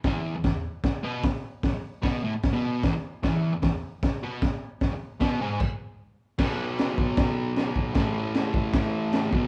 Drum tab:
CC |--------|--------|--------|----x---|
HH |o-o-o-o-|o-o-o-o-|o-o-o-o-|o-o-----|
SD |o-o-o-o-|o-o-o-o-|o-o-o-o-|o-o-----|
BD |o-o-o-o-|o-o-o-o-|o-o-o-o-|o-o-o---|

CC |x-x-x-x-|x-x-x-x-|
HH |--------|--------|
SD |o-o-o-o-|o-o-o-o-|
BD |o--oo--o|o--oo--o|